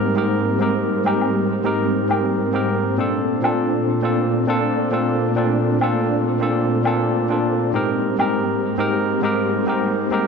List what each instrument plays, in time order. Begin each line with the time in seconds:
Already playing: tine electric piano G#2 C4 D#4 G4 A#4, string machine G#2 G3 A#3 C4
0.15 tine electric piano G#2 C4 D#4 G4 A#4
0.60 tine electric piano G#2 C4 D#4 G4 A#4
1.04 tine electric piano G#2 C4 D#4 G4 A#4, low woodblock
1.21 low woodblock
1.64 tine electric piano G#2 C4 D#4 G4 A#4
2.08 tine electric piano G#2 C4 D#4 G4 A#4, low woodblock
2.53 tine electric piano G#2 C4 D#4 G4 A#4
2.98 tine electric piano A#2 C4 D4 F4 A4, string machine A#2 A3 D4
3.42 tine electric piano A#2 C4 D4 F4 A4, low woodblock
4.02 tine electric piano A#2 C4 D4 F4 A4
4.47 tine electric piano A#2 C4 D4 F4 A4
4.91 tine electric piano A#2 C4 D4 F4 A4
5.35 tine electric piano A#2 C4 D4 F4 A4
5.80 tine electric piano A#2 C4 D4 F4 A4, low woodblock
6.39 tine electric piano A#2 C4 D4 F4 A4
6.84 tine electric piano A#2 C4 D4 F4 A4, low woodblock
7.29 tine electric piano A#2 C4 D4 F4 A4
7.73 tine electric piano G#2 C4 D#4 G4 A#4, string machine G#2 G3 A#3 C4
8.18 tine electric piano G#2 C4 D#4 G4 A#4, low woodblock
8.77 tine electric piano G#2 C4 D#4 G4 A#4
9.22 tine electric piano G#2 C4 D#4 G4 A#4
9.66 tine electric piano G#2 C4 D#4 G4 A#4
10.11 tine electric piano G#2 C4 D#4 G4 A#4